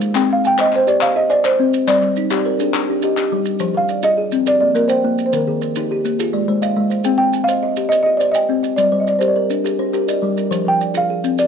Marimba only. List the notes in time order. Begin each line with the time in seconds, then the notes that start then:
0.33 F5
0.47 G5
0.61 D#5
0.76 C5
0.88 D5
1.02 F5
1.16 D#5
1.30 D5
1.45 C5
1.88 D5
3.77 F5
4.04 D#5
4.48 D5
4.60 D5
4.75 A#4
4.88 C5
5.26 C5
5.34 A#4
7.18 G5
7.44 F5
7.89 D#5
8.03 D#5
8.17 D5
8.32 D#5
8.76 D5
9.00 D#5
9.08 D5
9.19 C5
9.28 D5
10.68 G5
10.97 F5
11.39 D5